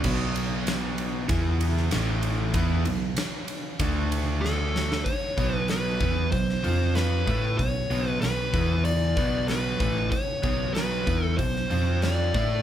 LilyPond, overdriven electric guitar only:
\new Staff \with { instrumentName = "Overdriven electric guitar" } { \clef bass \time 4/4 \key b \minor \tempo 4 = 95 <b, fis b>2 <e b e'>4 <a, e a>4 | <e b e'>8 <b, fis>8 r4 <d a d'>2 | r8 <b, fis b>4 <e b e'>8 <b, fis>8 <f c' f'>4 <a e' a'>8 | <b, fis>8 <b, fis b>8 <b, fis>8 <e b e'>4 <b, fis b>4 <a, e a>8 |
r8 <b, fis b>4 <e b e'>8 <b, fis>8 <f c' f'>4 <a e' a'>8 | }